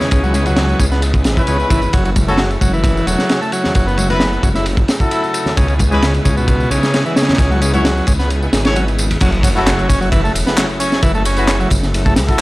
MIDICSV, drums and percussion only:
0, 0, Header, 1, 2, 480
1, 0, Start_track
1, 0, Key_signature, 3, "minor"
1, 0, Tempo, 454545
1, 126, Time_signature, 4, 2, 24, 8
1, 13106, End_track
2, 0, Start_track
2, 0, Title_t, "Drums"
2, 7, Note_on_c, 9, 38, 43
2, 10, Note_on_c, 9, 54, 30
2, 10, Note_on_c, 9, 64, 96
2, 113, Note_off_c, 9, 38, 0
2, 115, Note_off_c, 9, 64, 0
2, 116, Note_off_c, 9, 54, 0
2, 118, Note_on_c, 9, 51, 85
2, 125, Note_on_c, 9, 54, 40
2, 126, Note_on_c, 9, 36, 106
2, 223, Note_off_c, 9, 51, 0
2, 231, Note_off_c, 9, 54, 0
2, 232, Note_off_c, 9, 36, 0
2, 248, Note_on_c, 9, 63, 81
2, 250, Note_on_c, 9, 54, 20
2, 354, Note_off_c, 9, 63, 0
2, 356, Note_off_c, 9, 54, 0
2, 360, Note_on_c, 9, 54, 70
2, 361, Note_on_c, 9, 63, 87
2, 369, Note_on_c, 9, 51, 63
2, 466, Note_off_c, 9, 54, 0
2, 466, Note_off_c, 9, 63, 0
2, 474, Note_off_c, 9, 51, 0
2, 482, Note_on_c, 9, 51, 48
2, 485, Note_on_c, 9, 63, 60
2, 489, Note_on_c, 9, 64, 73
2, 491, Note_on_c, 9, 54, 29
2, 587, Note_off_c, 9, 51, 0
2, 591, Note_off_c, 9, 63, 0
2, 595, Note_off_c, 9, 64, 0
2, 596, Note_on_c, 9, 38, 119
2, 596, Note_on_c, 9, 51, 86
2, 597, Note_off_c, 9, 54, 0
2, 601, Note_on_c, 9, 54, 39
2, 702, Note_off_c, 9, 38, 0
2, 702, Note_off_c, 9, 51, 0
2, 707, Note_off_c, 9, 54, 0
2, 729, Note_on_c, 9, 54, 19
2, 834, Note_off_c, 9, 54, 0
2, 840, Note_on_c, 9, 36, 78
2, 840, Note_on_c, 9, 51, 64
2, 841, Note_on_c, 9, 54, 74
2, 849, Note_on_c, 9, 63, 58
2, 945, Note_off_c, 9, 36, 0
2, 945, Note_off_c, 9, 51, 0
2, 947, Note_off_c, 9, 54, 0
2, 955, Note_off_c, 9, 63, 0
2, 970, Note_on_c, 9, 54, 29
2, 971, Note_on_c, 9, 38, 36
2, 1075, Note_off_c, 9, 54, 0
2, 1077, Note_off_c, 9, 38, 0
2, 1079, Note_on_c, 9, 51, 87
2, 1083, Note_on_c, 9, 54, 42
2, 1184, Note_off_c, 9, 51, 0
2, 1188, Note_off_c, 9, 54, 0
2, 1203, Note_on_c, 9, 36, 84
2, 1209, Note_on_c, 9, 54, 21
2, 1309, Note_off_c, 9, 36, 0
2, 1312, Note_on_c, 9, 51, 65
2, 1315, Note_off_c, 9, 54, 0
2, 1321, Note_on_c, 9, 38, 115
2, 1322, Note_on_c, 9, 54, 68
2, 1417, Note_off_c, 9, 51, 0
2, 1426, Note_off_c, 9, 38, 0
2, 1427, Note_off_c, 9, 54, 0
2, 1447, Note_on_c, 9, 36, 83
2, 1450, Note_on_c, 9, 54, 30
2, 1551, Note_on_c, 9, 51, 87
2, 1553, Note_off_c, 9, 36, 0
2, 1556, Note_off_c, 9, 54, 0
2, 1561, Note_on_c, 9, 54, 42
2, 1657, Note_off_c, 9, 51, 0
2, 1666, Note_off_c, 9, 54, 0
2, 1687, Note_on_c, 9, 54, 20
2, 1793, Note_off_c, 9, 54, 0
2, 1800, Note_on_c, 9, 36, 109
2, 1800, Note_on_c, 9, 51, 77
2, 1802, Note_on_c, 9, 54, 70
2, 1905, Note_off_c, 9, 36, 0
2, 1906, Note_off_c, 9, 51, 0
2, 1907, Note_off_c, 9, 54, 0
2, 1919, Note_on_c, 9, 51, 38
2, 1929, Note_on_c, 9, 54, 28
2, 1929, Note_on_c, 9, 64, 89
2, 2024, Note_off_c, 9, 51, 0
2, 2035, Note_off_c, 9, 54, 0
2, 2035, Note_off_c, 9, 64, 0
2, 2037, Note_on_c, 9, 51, 89
2, 2044, Note_on_c, 9, 54, 37
2, 2045, Note_on_c, 9, 36, 107
2, 2143, Note_off_c, 9, 51, 0
2, 2150, Note_off_c, 9, 54, 0
2, 2151, Note_off_c, 9, 36, 0
2, 2167, Note_on_c, 9, 54, 19
2, 2168, Note_on_c, 9, 51, 38
2, 2273, Note_off_c, 9, 54, 0
2, 2274, Note_off_c, 9, 51, 0
2, 2278, Note_on_c, 9, 51, 66
2, 2278, Note_on_c, 9, 63, 77
2, 2282, Note_on_c, 9, 36, 89
2, 2283, Note_on_c, 9, 54, 69
2, 2384, Note_off_c, 9, 51, 0
2, 2384, Note_off_c, 9, 63, 0
2, 2388, Note_off_c, 9, 36, 0
2, 2389, Note_off_c, 9, 54, 0
2, 2410, Note_on_c, 9, 54, 28
2, 2413, Note_on_c, 9, 62, 67
2, 2415, Note_on_c, 9, 63, 61
2, 2417, Note_on_c, 9, 64, 71
2, 2509, Note_on_c, 9, 38, 120
2, 2514, Note_on_c, 9, 51, 94
2, 2516, Note_off_c, 9, 54, 0
2, 2519, Note_off_c, 9, 62, 0
2, 2521, Note_off_c, 9, 63, 0
2, 2521, Note_on_c, 9, 54, 37
2, 2522, Note_off_c, 9, 64, 0
2, 2615, Note_off_c, 9, 38, 0
2, 2619, Note_off_c, 9, 51, 0
2, 2627, Note_off_c, 9, 54, 0
2, 2645, Note_on_c, 9, 51, 42
2, 2649, Note_on_c, 9, 54, 19
2, 2751, Note_off_c, 9, 51, 0
2, 2755, Note_off_c, 9, 54, 0
2, 2759, Note_on_c, 9, 36, 97
2, 2762, Note_on_c, 9, 51, 57
2, 2764, Note_on_c, 9, 54, 68
2, 2769, Note_on_c, 9, 63, 62
2, 2865, Note_off_c, 9, 36, 0
2, 2868, Note_off_c, 9, 51, 0
2, 2870, Note_off_c, 9, 54, 0
2, 2875, Note_off_c, 9, 63, 0
2, 2893, Note_on_c, 9, 54, 28
2, 2995, Note_on_c, 9, 36, 112
2, 2999, Note_off_c, 9, 54, 0
2, 3001, Note_on_c, 9, 51, 87
2, 3010, Note_on_c, 9, 54, 39
2, 3101, Note_off_c, 9, 36, 0
2, 3106, Note_off_c, 9, 51, 0
2, 3116, Note_off_c, 9, 54, 0
2, 3137, Note_on_c, 9, 54, 21
2, 3242, Note_off_c, 9, 54, 0
2, 3243, Note_on_c, 9, 51, 70
2, 3252, Note_on_c, 9, 54, 69
2, 3348, Note_off_c, 9, 51, 0
2, 3357, Note_off_c, 9, 54, 0
2, 3365, Note_on_c, 9, 38, 47
2, 3367, Note_on_c, 9, 62, 51
2, 3377, Note_on_c, 9, 54, 29
2, 3470, Note_off_c, 9, 38, 0
2, 3472, Note_off_c, 9, 62, 0
2, 3478, Note_on_c, 9, 51, 86
2, 3483, Note_off_c, 9, 54, 0
2, 3485, Note_on_c, 9, 38, 119
2, 3488, Note_on_c, 9, 54, 41
2, 3583, Note_off_c, 9, 51, 0
2, 3591, Note_off_c, 9, 38, 0
2, 3593, Note_off_c, 9, 54, 0
2, 3616, Note_on_c, 9, 54, 20
2, 3718, Note_on_c, 9, 51, 68
2, 3722, Note_off_c, 9, 54, 0
2, 3730, Note_on_c, 9, 54, 67
2, 3824, Note_off_c, 9, 51, 0
2, 3836, Note_off_c, 9, 54, 0
2, 3844, Note_on_c, 9, 38, 49
2, 3858, Note_on_c, 9, 54, 29
2, 3863, Note_on_c, 9, 64, 92
2, 3949, Note_off_c, 9, 38, 0
2, 3957, Note_on_c, 9, 51, 85
2, 3963, Note_off_c, 9, 54, 0
2, 3963, Note_on_c, 9, 36, 114
2, 3968, Note_off_c, 9, 64, 0
2, 3972, Note_on_c, 9, 54, 37
2, 4063, Note_off_c, 9, 51, 0
2, 4069, Note_off_c, 9, 36, 0
2, 4078, Note_off_c, 9, 54, 0
2, 4098, Note_on_c, 9, 54, 20
2, 4198, Note_on_c, 9, 51, 62
2, 4203, Note_off_c, 9, 54, 0
2, 4209, Note_on_c, 9, 63, 79
2, 4210, Note_on_c, 9, 54, 70
2, 4304, Note_off_c, 9, 51, 0
2, 4315, Note_off_c, 9, 63, 0
2, 4316, Note_off_c, 9, 54, 0
2, 4329, Note_on_c, 9, 51, 44
2, 4331, Note_on_c, 9, 63, 56
2, 4333, Note_on_c, 9, 64, 76
2, 4335, Note_on_c, 9, 54, 28
2, 4336, Note_on_c, 9, 62, 63
2, 4434, Note_on_c, 9, 38, 112
2, 4435, Note_off_c, 9, 51, 0
2, 4437, Note_off_c, 9, 63, 0
2, 4437, Note_on_c, 9, 51, 85
2, 4439, Note_off_c, 9, 64, 0
2, 4440, Note_off_c, 9, 54, 0
2, 4441, Note_off_c, 9, 62, 0
2, 4446, Note_on_c, 9, 54, 36
2, 4540, Note_off_c, 9, 38, 0
2, 4543, Note_off_c, 9, 51, 0
2, 4552, Note_off_c, 9, 54, 0
2, 4572, Note_on_c, 9, 54, 19
2, 4677, Note_off_c, 9, 54, 0
2, 4679, Note_on_c, 9, 51, 61
2, 4680, Note_on_c, 9, 36, 90
2, 4685, Note_on_c, 9, 54, 67
2, 4693, Note_on_c, 9, 63, 59
2, 4784, Note_off_c, 9, 51, 0
2, 4785, Note_off_c, 9, 36, 0
2, 4791, Note_off_c, 9, 54, 0
2, 4798, Note_off_c, 9, 63, 0
2, 4801, Note_on_c, 9, 38, 35
2, 4810, Note_on_c, 9, 54, 29
2, 4811, Note_on_c, 9, 62, 32
2, 4906, Note_off_c, 9, 38, 0
2, 4915, Note_off_c, 9, 54, 0
2, 4917, Note_off_c, 9, 62, 0
2, 4918, Note_on_c, 9, 51, 81
2, 4923, Note_on_c, 9, 54, 39
2, 5024, Note_off_c, 9, 51, 0
2, 5028, Note_off_c, 9, 54, 0
2, 5039, Note_on_c, 9, 36, 98
2, 5044, Note_on_c, 9, 54, 20
2, 5145, Note_off_c, 9, 36, 0
2, 5150, Note_off_c, 9, 54, 0
2, 5155, Note_on_c, 9, 51, 66
2, 5161, Note_on_c, 9, 38, 112
2, 5162, Note_on_c, 9, 54, 64
2, 5261, Note_off_c, 9, 51, 0
2, 5267, Note_off_c, 9, 38, 0
2, 5268, Note_off_c, 9, 54, 0
2, 5281, Note_on_c, 9, 36, 88
2, 5290, Note_on_c, 9, 54, 30
2, 5386, Note_off_c, 9, 36, 0
2, 5395, Note_off_c, 9, 54, 0
2, 5398, Note_on_c, 9, 51, 88
2, 5401, Note_on_c, 9, 54, 39
2, 5504, Note_off_c, 9, 51, 0
2, 5507, Note_off_c, 9, 54, 0
2, 5530, Note_on_c, 9, 54, 20
2, 5635, Note_off_c, 9, 54, 0
2, 5639, Note_on_c, 9, 51, 72
2, 5642, Note_on_c, 9, 54, 71
2, 5744, Note_off_c, 9, 51, 0
2, 5747, Note_off_c, 9, 54, 0
2, 5766, Note_on_c, 9, 64, 79
2, 5767, Note_on_c, 9, 38, 41
2, 5772, Note_on_c, 9, 54, 30
2, 5871, Note_off_c, 9, 64, 0
2, 5872, Note_off_c, 9, 38, 0
2, 5878, Note_off_c, 9, 54, 0
2, 5884, Note_on_c, 9, 54, 40
2, 5885, Note_on_c, 9, 36, 108
2, 5886, Note_on_c, 9, 51, 83
2, 5990, Note_off_c, 9, 54, 0
2, 5991, Note_off_c, 9, 36, 0
2, 5992, Note_off_c, 9, 51, 0
2, 6000, Note_on_c, 9, 51, 44
2, 6014, Note_on_c, 9, 54, 20
2, 6106, Note_off_c, 9, 51, 0
2, 6116, Note_on_c, 9, 63, 81
2, 6117, Note_on_c, 9, 51, 69
2, 6119, Note_off_c, 9, 54, 0
2, 6125, Note_on_c, 9, 36, 91
2, 6126, Note_on_c, 9, 54, 73
2, 6221, Note_off_c, 9, 63, 0
2, 6222, Note_off_c, 9, 51, 0
2, 6231, Note_off_c, 9, 36, 0
2, 6231, Note_off_c, 9, 54, 0
2, 6252, Note_on_c, 9, 54, 31
2, 6257, Note_on_c, 9, 62, 66
2, 6258, Note_on_c, 9, 63, 56
2, 6260, Note_on_c, 9, 64, 70
2, 6357, Note_off_c, 9, 54, 0
2, 6362, Note_on_c, 9, 51, 91
2, 6363, Note_off_c, 9, 62, 0
2, 6363, Note_off_c, 9, 63, 0
2, 6364, Note_on_c, 9, 38, 113
2, 6366, Note_off_c, 9, 64, 0
2, 6368, Note_on_c, 9, 54, 39
2, 6467, Note_off_c, 9, 51, 0
2, 6470, Note_off_c, 9, 38, 0
2, 6473, Note_off_c, 9, 54, 0
2, 6488, Note_on_c, 9, 51, 48
2, 6490, Note_on_c, 9, 54, 20
2, 6594, Note_off_c, 9, 51, 0
2, 6596, Note_off_c, 9, 54, 0
2, 6602, Note_on_c, 9, 63, 57
2, 6603, Note_on_c, 9, 54, 71
2, 6606, Note_on_c, 9, 36, 85
2, 6609, Note_on_c, 9, 51, 66
2, 6708, Note_off_c, 9, 54, 0
2, 6708, Note_off_c, 9, 63, 0
2, 6711, Note_off_c, 9, 36, 0
2, 6715, Note_off_c, 9, 51, 0
2, 6731, Note_on_c, 9, 54, 30
2, 6836, Note_off_c, 9, 54, 0
2, 6840, Note_on_c, 9, 51, 84
2, 6841, Note_on_c, 9, 36, 105
2, 6846, Note_on_c, 9, 54, 40
2, 6946, Note_off_c, 9, 36, 0
2, 6946, Note_off_c, 9, 51, 0
2, 6952, Note_off_c, 9, 54, 0
2, 6972, Note_on_c, 9, 54, 20
2, 7077, Note_off_c, 9, 54, 0
2, 7087, Note_on_c, 9, 54, 69
2, 7090, Note_on_c, 9, 51, 67
2, 7193, Note_off_c, 9, 54, 0
2, 7196, Note_off_c, 9, 51, 0
2, 7212, Note_on_c, 9, 54, 32
2, 7216, Note_on_c, 9, 38, 57
2, 7218, Note_on_c, 9, 62, 53
2, 7317, Note_off_c, 9, 54, 0
2, 7322, Note_off_c, 9, 38, 0
2, 7324, Note_off_c, 9, 62, 0
2, 7326, Note_on_c, 9, 54, 40
2, 7327, Note_on_c, 9, 51, 91
2, 7332, Note_on_c, 9, 38, 127
2, 7431, Note_off_c, 9, 54, 0
2, 7433, Note_off_c, 9, 51, 0
2, 7437, Note_off_c, 9, 38, 0
2, 7453, Note_on_c, 9, 54, 21
2, 7558, Note_off_c, 9, 54, 0
2, 7562, Note_on_c, 9, 38, 91
2, 7567, Note_on_c, 9, 54, 73
2, 7574, Note_on_c, 9, 51, 62
2, 7630, Note_off_c, 9, 38, 0
2, 7630, Note_on_c, 9, 38, 96
2, 7634, Note_off_c, 9, 51, 0
2, 7634, Note_on_c, 9, 51, 70
2, 7672, Note_off_c, 9, 54, 0
2, 7695, Note_off_c, 9, 38, 0
2, 7695, Note_on_c, 9, 38, 82
2, 7695, Note_on_c, 9, 54, 28
2, 7699, Note_off_c, 9, 51, 0
2, 7699, Note_on_c, 9, 51, 61
2, 7701, Note_on_c, 9, 64, 89
2, 7741, Note_off_c, 9, 38, 0
2, 7741, Note_on_c, 9, 38, 86
2, 7758, Note_off_c, 9, 51, 0
2, 7758, Note_on_c, 9, 51, 68
2, 7797, Note_on_c, 9, 36, 118
2, 7800, Note_off_c, 9, 51, 0
2, 7800, Note_off_c, 9, 54, 0
2, 7800, Note_on_c, 9, 51, 97
2, 7807, Note_off_c, 9, 64, 0
2, 7808, Note_on_c, 9, 54, 42
2, 7847, Note_off_c, 9, 38, 0
2, 7902, Note_off_c, 9, 36, 0
2, 7906, Note_off_c, 9, 51, 0
2, 7913, Note_off_c, 9, 54, 0
2, 7936, Note_on_c, 9, 63, 79
2, 7939, Note_on_c, 9, 54, 20
2, 8041, Note_on_c, 9, 51, 71
2, 8042, Note_off_c, 9, 63, 0
2, 8045, Note_off_c, 9, 54, 0
2, 8049, Note_on_c, 9, 54, 74
2, 8055, Note_on_c, 9, 63, 85
2, 8147, Note_off_c, 9, 51, 0
2, 8155, Note_off_c, 9, 54, 0
2, 8161, Note_off_c, 9, 63, 0
2, 8168, Note_on_c, 9, 51, 45
2, 8175, Note_on_c, 9, 62, 70
2, 8178, Note_on_c, 9, 54, 32
2, 8183, Note_on_c, 9, 63, 53
2, 8183, Note_on_c, 9, 64, 70
2, 8273, Note_off_c, 9, 51, 0
2, 8281, Note_off_c, 9, 62, 0
2, 8283, Note_off_c, 9, 54, 0
2, 8288, Note_off_c, 9, 63, 0
2, 8288, Note_off_c, 9, 64, 0
2, 8288, Note_on_c, 9, 38, 116
2, 8288, Note_on_c, 9, 51, 88
2, 8288, Note_on_c, 9, 54, 41
2, 8393, Note_off_c, 9, 38, 0
2, 8394, Note_off_c, 9, 51, 0
2, 8394, Note_off_c, 9, 54, 0
2, 8419, Note_on_c, 9, 54, 21
2, 8519, Note_on_c, 9, 51, 63
2, 8524, Note_off_c, 9, 54, 0
2, 8528, Note_on_c, 9, 54, 72
2, 8530, Note_on_c, 9, 36, 93
2, 8540, Note_on_c, 9, 63, 57
2, 8624, Note_off_c, 9, 51, 0
2, 8634, Note_off_c, 9, 54, 0
2, 8636, Note_off_c, 9, 36, 0
2, 8646, Note_off_c, 9, 63, 0
2, 8653, Note_on_c, 9, 38, 36
2, 8654, Note_on_c, 9, 54, 32
2, 8655, Note_on_c, 9, 62, 42
2, 8759, Note_off_c, 9, 38, 0
2, 8760, Note_off_c, 9, 54, 0
2, 8760, Note_off_c, 9, 62, 0
2, 8768, Note_on_c, 9, 51, 73
2, 8768, Note_on_c, 9, 54, 41
2, 8873, Note_off_c, 9, 51, 0
2, 8873, Note_off_c, 9, 54, 0
2, 8896, Note_on_c, 9, 54, 21
2, 9001, Note_off_c, 9, 54, 0
2, 9005, Note_on_c, 9, 51, 78
2, 9006, Note_on_c, 9, 38, 104
2, 9007, Note_on_c, 9, 54, 70
2, 9111, Note_off_c, 9, 38, 0
2, 9111, Note_off_c, 9, 51, 0
2, 9112, Note_off_c, 9, 54, 0
2, 9132, Note_on_c, 9, 51, 72
2, 9134, Note_on_c, 9, 54, 31
2, 9139, Note_on_c, 9, 38, 109
2, 9237, Note_off_c, 9, 51, 0
2, 9239, Note_off_c, 9, 54, 0
2, 9244, Note_off_c, 9, 38, 0
2, 9248, Note_on_c, 9, 54, 44
2, 9253, Note_on_c, 9, 51, 78
2, 9354, Note_off_c, 9, 54, 0
2, 9359, Note_off_c, 9, 51, 0
2, 9378, Note_on_c, 9, 54, 21
2, 9379, Note_on_c, 9, 51, 43
2, 9484, Note_off_c, 9, 54, 0
2, 9485, Note_off_c, 9, 51, 0
2, 9488, Note_on_c, 9, 54, 78
2, 9493, Note_on_c, 9, 51, 60
2, 9593, Note_off_c, 9, 54, 0
2, 9599, Note_off_c, 9, 51, 0
2, 9616, Note_on_c, 9, 51, 73
2, 9617, Note_on_c, 9, 54, 29
2, 9618, Note_on_c, 9, 64, 98
2, 9719, Note_on_c, 9, 49, 85
2, 9721, Note_off_c, 9, 51, 0
2, 9722, Note_off_c, 9, 54, 0
2, 9724, Note_off_c, 9, 64, 0
2, 9727, Note_on_c, 9, 36, 112
2, 9727, Note_on_c, 9, 51, 84
2, 9732, Note_on_c, 9, 54, 43
2, 9825, Note_off_c, 9, 49, 0
2, 9833, Note_off_c, 9, 36, 0
2, 9833, Note_off_c, 9, 51, 0
2, 9837, Note_off_c, 9, 54, 0
2, 9844, Note_on_c, 9, 51, 43
2, 9860, Note_on_c, 9, 54, 21
2, 9950, Note_off_c, 9, 51, 0
2, 9960, Note_on_c, 9, 36, 92
2, 9966, Note_off_c, 9, 54, 0
2, 9969, Note_on_c, 9, 51, 89
2, 9969, Note_on_c, 9, 54, 78
2, 9972, Note_off_c, 9, 51, 0
2, 9972, Note_on_c, 9, 51, 76
2, 10066, Note_off_c, 9, 36, 0
2, 10075, Note_off_c, 9, 54, 0
2, 10077, Note_off_c, 9, 51, 0
2, 10100, Note_on_c, 9, 54, 34
2, 10206, Note_off_c, 9, 54, 0
2, 10206, Note_on_c, 9, 51, 97
2, 10210, Note_on_c, 9, 38, 119
2, 10215, Note_on_c, 9, 39, 104
2, 10215, Note_on_c, 9, 54, 43
2, 10312, Note_off_c, 9, 51, 0
2, 10315, Note_off_c, 9, 38, 0
2, 10320, Note_off_c, 9, 39, 0
2, 10320, Note_off_c, 9, 54, 0
2, 10336, Note_on_c, 9, 51, 45
2, 10341, Note_on_c, 9, 54, 22
2, 10442, Note_off_c, 9, 51, 0
2, 10447, Note_off_c, 9, 54, 0
2, 10447, Note_on_c, 9, 51, 69
2, 10450, Note_on_c, 9, 36, 81
2, 10455, Note_off_c, 9, 51, 0
2, 10455, Note_on_c, 9, 51, 76
2, 10455, Note_on_c, 9, 54, 80
2, 10555, Note_off_c, 9, 36, 0
2, 10561, Note_off_c, 9, 51, 0
2, 10561, Note_off_c, 9, 54, 0
2, 10583, Note_on_c, 9, 54, 34
2, 10687, Note_on_c, 9, 36, 104
2, 10689, Note_off_c, 9, 54, 0
2, 10690, Note_on_c, 9, 51, 93
2, 10694, Note_on_c, 9, 54, 43
2, 10792, Note_off_c, 9, 36, 0
2, 10796, Note_off_c, 9, 51, 0
2, 10800, Note_off_c, 9, 54, 0
2, 10825, Note_on_c, 9, 54, 22
2, 10931, Note_off_c, 9, 54, 0
2, 10932, Note_on_c, 9, 51, 69
2, 10937, Note_off_c, 9, 51, 0
2, 10937, Note_on_c, 9, 51, 88
2, 10937, Note_on_c, 9, 54, 75
2, 11042, Note_off_c, 9, 51, 0
2, 11042, Note_off_c, 9, 54, 0
2, 11058, Note_on_c, 9, 38, 58
2, 11058, Note_on_c, 9, 54, 32
2, 11163, Note_off_c, 9, 54, 0
2, 11164, Note_off_c, 9, 38, 0
2, 11168, Note_on_c, 9, 39, 109
2, 11168, Note_on_c, 9, 54, 43
2, 11171, Note_on_c, 9, 38, 127
2, 11175, Note_on_c, 9, 51, 86
2, 11273, Note_off_c, 9, 39, 0
2, 11273, Note_off_c, 9, 54, 0
2, 11277, Note_off_c, 9, 38, 0
2, 11280, Note_off_c, 9, 51, 0
2, 11293, Note_on_c, 9, 54, 22
2, 11398, Note_off_c, 9, 54, 0
2, 11405, Note_on_c, 9, 51, 80
2, 11405, Note_on_c, 9, 54, 76
2, 11416, Note_off_c, 9, 51, 0
2, 11416, Note_on_c, 9, 51, 69
2, 11511, Note_off_c, 9, 54, 0
2, 11522, Note_off_c, 9, 51, 0
2, 11532, Note_on_c, 9, 54, 33
2, 11534, Note_on_c, 9, 38, 54
2, 11637, Note_off_c, 9, 54, 0
2, 11639, Note_off_c, 9, 38, 0
2, 11643, Note_on_c, 9, 51, 93
2, 11643, Note_on_c, 9, 54, 45
2, 11645, Note_on_c, 9, 36, 116
2, 11749, Note_off_c, 9, 51, 0
2, 11749, Note_off_c, 9, 54, 0
2, 11750, Note_off_c, 9, 36, 0
2, 11771, Note_on_c, 9, 54, 22
2, 11877, Note_off_c, 9, 54, 0
2, 11883, Note_on_c, 9, 51, 70
2, 11884, Note_off_c, 9, 51, 0
2, 11884, Note_on_c, 9, 51, 83
2, 11884, Note_on_c, 9, 54, 77
2, 11990, Note_off_c, 9, 51, 0
2, 11990, Note_off_c, 9, 54, 0
2, 12002, Note_on_c, 9, 51, 43
2, 12009, Note_on_c, 9, 54, 33
2, 12107, Note_off_c, 9, 51, 0
2, 12115, Note_off_c, 9, 54, 0
2, 12119, Note_on_c, 9, 38, 125
2, 12122, Note_on_c, 9, 51, 95
2, 12126, Note_on_c, 9, 39, 109
2, 12126, Note_on_c, 9, 54, 43
2, 12225, Note_off_c, 9, 38, 0
2, 12228, Note_off_c, 9, 51, 0
2, 12231, Note_off_c, 9, 39, 0
2, 12231, Note_off_c, 9, 54, 0
2, 12254, Note_on_c, 9, 54, 22
2, 12358, Note_on_c, 9, 51, 59
2, 12360, Note_off_c, 9, 54, 0
2, 12367, Note_on_c, 9, 36, 89
2, 12369, Note_off_c, 9, 51, 0
2, 12369, Note_on_c, 9, 51, 77
2, 12369, Note_on_c, 9, 54, 82
2, 12473, Note_off_c, 9, 36, 0
2, 12474, Note_off_c, 9, 51, 0
2, 12474, Note_off_c, 9, 54, 0
2, 12493, Note_on_c, 9, 38, 35
2, 12496, Note_on_c, 9, 54, 33
2, 12598, Note_off_c, 9, 38, 0
2, 12602, Note_off_c, 9, 54, 0
2, 12611, Note_on_c, 9, 51, 93
2, 12611, Note_on_c, 9, 54, 45
2, 12716, Note_off_c, 9, 54, 0
2, 12717, Note_off_c, 9, 51, 0
2, 12734, Note_on_c, 9, 36, 98
2, 12735, Note_on_c, 9, 54, 24
2, 12840, Note_off_c, 9, 36, 0
2, 12841, Note_off_c, 9, 54, 0
2, 12843, Note_on_c, 9, 38, 113
2, 12845, Note_on_c, 9, 51, 80
2, 12845, Note_on_c, 9, 54, 76
2, 12852, Note_off_c, 9, 51, 0
2, 12852, Note_on_c, 9, 51, 72
2, 12948, Note_off_c, 9, 38, 0
2, 12950, Note_off_c, 9, 54, 0
2, 12958, Note_off_c, 9, 51, 0
2, 12970, Note_on_c, 9, 54, 35
2, 12974, Note_on_c, 9, 36, 91
2, 13076, Note_off_c, 9, 54, 0
2, 13079, Note_off_c, 9, 36, 0
2, 13106, End_track
0, 0, End_of_file